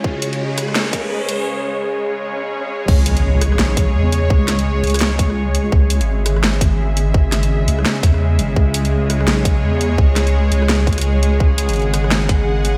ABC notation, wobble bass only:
X:1
M:4/4
L:1/16
Q:"Swing 16ths" 1/4=169
K:C#m
V:1 name="Wobble bass" clef=bass
z16 | z16 | C,,8 B,,,4 E,,4 | C,,6 C,,8- C,,2 |
C,,3 G,,,12- G,,,- | G,,,6 C,,2 z2 E,,4 G,,,2 | C,,8 B,,,4 E,,4 | C,,6 C,,8- C,,2 |
C,,3 G,,,12- G,,, |]